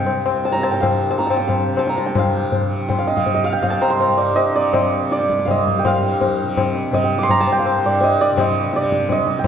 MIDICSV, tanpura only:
0, 0, Header, 1, 2, 480
1, 0, Start_track
1, 0, Tempo, 374766
1, 314, Time_signature, 5, 2, 24, 8
1, 6069, Tempo, 361664
1, 12351, End_track
2, 0, Start_track
2, 0, Title_t, "Tanpura"
2, 0, Program_c, 0, 104
2, 0, Note_on_c, 0, 36, 71
2, 0, Note_on_c, 0, 43, 51
2, 0, Note_on_c, 0, 48, 58
2, 263, Note_off_c, 0, 36, 0
2, 268, Note_on_c, 0, 36, 58
2, 883, Note_off_c, 0, 43, 0
2, 888, Note_on_c, 0, 43, 56
2, 1531, Note_off_c, 0, 48, 0
2, 1531, Note_on_c, 0, 48, 56
2, 2150, Note_off_c, 0, 48, 0
2, 2150, Note_on_c, 0, 48, 59
2, 2754, Note_off_c, 0, 43, 0
2, 2754, Note_on_c, 0, 43, 60
2, 3367, Note_off_c, 0, 48, 0
2, 3367, Note_on_c, 0, 48, 58
2, 3981, Note_off_c, 0, 48, 0
2, 3981, Note_on_c, 0, 48, 69
2, 4588, Note_off_c, 0, 36, 0
2, 4593, Note_on_c, 0, 36, 68
2, 5233, Note_off_c, 0, 43, 0
2, 5233, Note_on_c, 0, 43, 61
2, 5817, Note_off_c, 0, 48, 0
2, 5817, Note_on_c, 0, 48, 63
2, 6444, Note_off_c, 0, 48, 0
2, 6444, Note_on_c, 0, 48, 62
2, 7060, Note_off_c, 0, 36, 0
2, 7065, Note_on_c, 0, 36, 72
2, 7708, Note_off_c, 0, 43, 0
2, 7714, Note_on_c, 0, 43, 72
2, 8324, Note_off_c, 0, 48, 0
2, 8324, Note_on_c, 0, 48, 71
2, 8946, Note_off_c, 0, 48, 0
2, 8946, Note_on_c, 0, 48, 73
2, 9536, Note_off_c, 0, 36, 0
2, 9541, Note_on_c, 0, 36, 72
2, 10193, Note_off_c, 0, 43, 0
2, 10198, Note_on_c, 0, 43, 74
2, 10802, Note_off_c, 0, 48, 0
2, 10802, Note_on_c, 0, 48, 71
2, 11420, Note_off_c, 0, 48, 0
2, 11420, Note_on_c, 0, 48, 79
2, 12016, Note_off_c, 0, 36, 0
2, 12021, Note_on_c, 0, 36, 69
2, 12351, Note_off_c, 0, 36, 0
2, 12351, Note_off_c, 0, 43, 0
2, 12351, Note_off_c, 0, 48, 0
2, 12351, End_track
0, 0, End_of_file